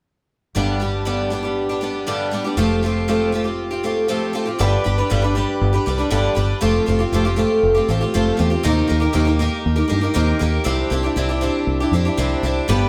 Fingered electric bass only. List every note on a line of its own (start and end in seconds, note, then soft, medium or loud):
0.56 2.54 G1 medium
2.57 4.56 F1 medium
4.60 4.76 G1 medium
4.86 5.02 G1 medium
5.11 5.43 G1 medium
5.61 5.77 G1 medium
5.87 6.03 C2 medium
6.11 6.28 G1 medium
6.37 6.53 G1 medium
6.63 6.79 F1 medium
6.88 7.04 F1 medium
7.12 7.44 F1 medium
7.63 7.79 F1 medium
7.88 8.05 A1 medium
8.15 8.31 F1 medium
8.40 8.55 E2 medium
8.65 8.81 D#2 medium
8.91 9.06 D#2 medium
9.15 9.47 D#2 medium
9.66 9.82 D#2 medium
9.91 10.07 G2 medium
10.16 10.32 D#2 medium
10.41 10.57 D#2 medium
10.66 10.82 C2 medium
10.91 11.07 C2 medium
11.16 11.49 C2 medium
11.67 11.83 C2 medium
11.92 12.08 F2 medium
12.18 12.34 C2 medium
12.43 12.59 C2 medium
12.69 12.85 G1 medium